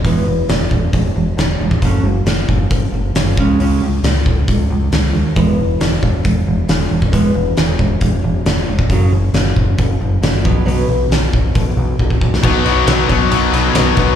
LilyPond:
<<
  \new Staff \with { instrumentName = "Distorted electric guitar" } { \clef bass \time 4/4 \key e \major \tempo 4 = 136 r1 | r1 | r1 | r1 |
r1 | r1 | r1 | <b, fis b>8 <b, fis b>8 <b, fis b>8 <b, fis b>8 <b, fis b>8 <b, fis b>8 <b, fis b>8 <b, fis b>8 | }
  \new Staff \with { instrumentName = "Steel-string acoustic guitar" } { \clef bass \time 4/4 \key e \major <e gis b>8 <e gis>8 <e gis>8 <e gis>8 <e gis>8 <e gis>8 <e gis>8 <e gis>8 | <fis a cis'>8 <fis a>8 <fis a>8 <fis a>8 <fis a>8 <fis a>8 <fis a>8 <cis gis cis'>8 | <cis gis cis'>8 <cis gis>8 <cis gis>8 <cis gis>8 <cis gis>8 <cis gis>8 <cis gis>8 <cis gis>8 | <e gis b>8 <e gis>8 <e gis>8 <e gis>8 <e gis>8 <e gis>8 <e gis>8 <e gis>8 |
<e gis b>8 <e gis>8 <e gis>8 <e gis>8 <e gis>8 <e gis>8 <e gis>8 <e gis>8 | <fis, cis fis>8 <fis, cis>8 <fis, cis>8 <fis, cis>8 <fis, cis>8 <fis, cis>8 <fis, cis>8 <b, fis b>8 | <b, fis b>8 <b, fis>8 <b, fis>8 <b, fis>8 <b, fis>8 <b, fis>8 <b, fis>8 <b, fis>8 | <b, fis b dis'>4 <b, fis b dis'>8 <fis b dis'>4. <b, fis b dis'>8 <fis b dis'>8 | }
  \new Staff \with { instrumentName = "Fingered electric bass" } { \clef bass \time 4/4 \key e \major e,,8 e,,8 e,,8 e,,8 e,,8 e,,8 e,,8 e,,8 | fis,,8 fis,,8 fis,,8 fis,,8 fis,,8 fis,,8 fis,,8 cis,8 | cis,8 cis,8 cis,8 cis,8 cis,8 cis,8 cis,8 dis,8 | e,,8 e,,8 e,,8 e,,8 e,,8 e,,8 e,,8 e,,8 |
e,,8 e,,8 e,,8 e,,8 e,,8 e,,8 e,,8 e,,8 | fis,,8 fis,,8 fis,,8 fis,,8 fis,,8 fis,,8 fis,,8 b,,8 | b,,8 b,,8 b,,8 b,,8 b,,8 b,,8 b,,8 b,,8 | b,,8 b,,8 b,,8 b,,8 b,,8 b,,8 b,,8 b,,8 | }
  \new DrumStaff \with { instrumentName = "Drums" } \drummode { \time 4/4 <hho bd>4 <hho sn>8 bd8 <hho bd>4 <hho sn>8. bd16 | <hho bd>4 <hho sn>8 bd8 <hho bd>4 <hho sn>8 bd8 | hho4 <hho sn>8 bd8 <hho bd>4 <hho sn>4 | <hho bd>4 <hho sn>8 bd8 <hho bd>4 <hho sn>8. bd16 |
<hho bd>4 <hho sn>8 bd8 <hho bd>4 <hho sn>8. bd16 | <hho bd>4 <hho sn>8 bd8 <hho bd>4 <hho sn>8 bd8 | hho4 <hho sn>8 bd8 <hho bd>4 bd16 bd16 bd16 sn16 | <cymc bd>8 cymr8 <cymr sn>8 <bd cymr>8 cymr8 cymr8 <cymr sn>8 <bd cymr>8 | }
>>